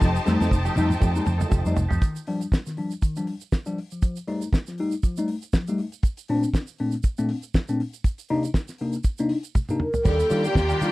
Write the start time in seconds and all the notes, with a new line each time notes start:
Already playing: D#4 G4 C5 A5
0.01 F1 F3 A3 D#4 G4 G5, kick, snare, shaker
0.16 muted clean electric guitar stroke, shaker
0.26 F2 F3 G3 A3 D#4 G4, snare, shaker
0.41 F2 F3 A3 D#4 A4, snare, shaker
0.51 F1 A3 D#4, kick, high tom, shaker
0.65 F3 A3 D#4 G4, shaker
0.76 F2 F3 G3 A3 D#4 G4, high tom, shaker
0.89 muted clean electric guitar stroke, mid tom, shaker
1.00 F2 F3 A3 D#4 G4, kick, mid tom, shaker
1.14 G3 A3 D#4, muted clean electric guitar stroke, shaker
1.25 F2 A3 D#4, muted clean electric guitar stroke, mid tom, shaker
1.38 F3 A3 D#4 A4, mid tom, shaker
1.49 F1 F3 A3 D#4 G4, kick, mid tom, shaker
1.64 F2 G3 A3 D#4, muted clean electric guitar stroke, shaker
1.74 F1 D#4, muted clean electric guitar stroke, floor tom, shaker
1.78 A3
1.89 F2 F3 A3 D#4 G4, floor tom, shaker
2.02 D#3, kick, closed hi-hat, shaker
2.16 closed hi-hat, shaker
2.27 F3 G3 D4, open hi-hat
2.41 G3 D4, closed hi-hat, shaker
2.52 kick, snare, shaker
2.66 D#3, snare, closed hi-hat, shaker
2.77 F3 G3 D4, open hi-hat
2.91 closed hi-hat, shaker
3.02 D#3, kick, closed hi-hat, shaker
3.16 F3 G3 D4, closed hi-hat, shaker
3.27 G3 D4, open hi-hat
3.41 closed hi-hat, shaker
3.52 kick, snare, shaker
3.66 F3 G3 D4, closed hi-hat, shaker
3.78 open hi-hat
3.91 F3, closed hi-hat, shaker
4.02 F3, kick, closed hi-hat, shaker
4.16 closed hi-hat, shaker
4.28 G3 A3 D#4, open hi-hat
4.41 A3 D#4, closed hi-hat, shaker
4.53 A3 D#4, kick, snare, shaker
4.67 F3, snare, closed hi-hat, shaker
4.78 G3 A3 D#4, open hi-hat
4.91 closed hi-hat, shaker
5.03 F3, kick, closed hi-hat, shaker
5.17 G3 A3 D#4, closed hi-hat, shaker
5.28 A3 D#4, open hi-hat
5.42 closed hi-hat, shaker
5.53 F3, kick, snare, shaker
5.67 G3 A3 D#4, closed hi-hat, shaker
5.78 A3 D#4, open hi-hat
5.92 closed hi-hat, shaker
6.03 kick, closed hi-hat, shaker
6.17 closed hi-hat, shaker
6.28 A#2 A3 C4 D4, open hi-hat
6.43 C4 D4, closed hi-hat, shaker
6.54 C4 D4, kick, snare, shaker
6.67 closed hi-hat, shaker
6.78 A#2 A3 C4 D4, open hi-hat
6.91 closed hi-hat, shaker
7.03 kick, closed hi-hat, shaker
7.18 A#2 A3 C4 D4, closed hi-hat, shaker
7.29 C4 D4, open hi-hat
7.43 closed hi-hat, shaker
7.54 kick, snare, shaker
7.68 A#2 A3 C4 D4, closed hi-hat, shaker
7.80 open hi-hat
7.93 closed hi-hat, shaker
8.04 kick, closed hi-hat, shaker
8.18 closed hi-hat, shaker
8.29 C3 A#3 D4 D#4, open hi-hat
8.43 D4 D#4, closed hi-hat, shaker
8.54 D4 D#4, kick, snare, shaker
8.68 snare, closed hi-hat, shaker
8.78 C3 A#3 D4 D#4, open hi-hat
8.93 closed hi-hat, shaker
9.04 kick, closed hi-hat, shaker
9.18 C3 A#3 D4 D#4, closed hi-hat, shaker
9.29 D4 D#4, open hi-hat
9.43 closed hi-hat, shaker
9.55 kick, high tom, shaker
9.69 C3 A#3 D4 D#4, mid tom, shaker
9.80 D4 D#4 A#4, mid tom
9.94 floor tom, shaker
10.05 D#2 D#3 G3 A#3 D4 F4 G4 A4 D5 G5, kick, crash, shaker
10.19 muted clean electric guitar stroke, closed hi-hat, shaker
10.30 D#3 G3 A#3 D4 F4 G4, open hi-hat, shaker
10.38 A4
10.44 G3 A#3 D4 F4 G4, closed hi-hat, shaker
10.55 D#2 D4 F4, kick, snare, shaker
10.69 D#3 G3 A#3 D4 G4, snare, closed hi-hat, shaker
10.80 D#3 G3 A#3 D4 F4 A4, open hi-hat, shaker